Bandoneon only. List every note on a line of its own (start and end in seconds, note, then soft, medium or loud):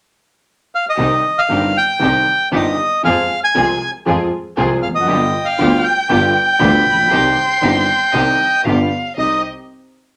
0.75 0.85 F5 medium
0.89 1.40 D#5 medium
1.38 1.77 F5 medium
1.77 2.49 G5 medium
2.56 3.02 D#5 medium
3.05 3.40 F5 medium
3.44 3.91 G#5 medium
4.83 4.88 F5 medium
4.95 5.47 D#5 medium
5.45 5.85 F5 medium
5.84 8.62 G5 medium
9.19 9.42 D#5 medium